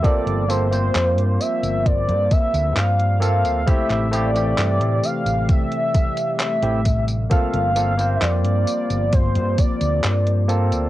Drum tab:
HH |xxxxxx-xxxxxxxxx|xxxxxx-xxxxxxxxx|xxxxxx-xxxxxxxxx|
TB |x-xxx-xxx-xxx-xx|x-xxx-xxx-xxx-xx|x-xxx-xxx-xxx-xx|
CP |----x-------x---|-x--x-------x---|----x-------x---|
BD |o-------o-o-----|o-------o-o---o-|o-------o-o-----|